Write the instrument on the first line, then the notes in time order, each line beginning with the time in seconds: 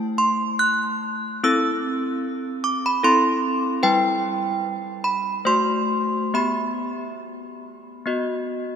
handbells
Already playing: A3 E4 C5 A5
0.18 C6
0.59 F#6
1.44 C4 E4 A4 E6
2.64 D6
2.86 B5
3.03 C4 E4 A4 C6
3.83 G3 E4 B4 G5
5.04 B5
5.45 A3 F#4 C5 C6
6.34 B3 G4 E5 B5
8.06 B3 F#4 D#5